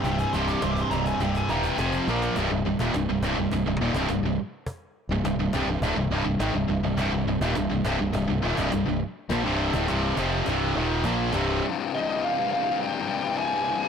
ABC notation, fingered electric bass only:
X:1
M:4/4
L:1/16
Q:1/4=104
K:Cm
V:1 name="Fingered electric bass" clef=bass
C,,,2 C,,,2 C,,,2 C,,,2 C,,,2 E,,,2 F,,,2 B,,,2 | C,,, C,,, C,,, E,,, C,,, C,,, C,,, C,,, C,,, C,,, E,,, C,,, C,,, C,,, z2 | z3 C,,, C,,, C,,, C,,, C,,, D,,, C,,, C,,, C,,, A,,, C,,, C,,, C,,, | C,,, C,,, C,,, E,,, C,,, C,,, C,,, C,,, C,,, C,,, E,,, C,,, C,,, C,,, z2 |
B,,, C,,,2 D,,, C,,,2 F,,,2 C,,,2 E,,,2 B,,,2 C,,,2 | z16 |]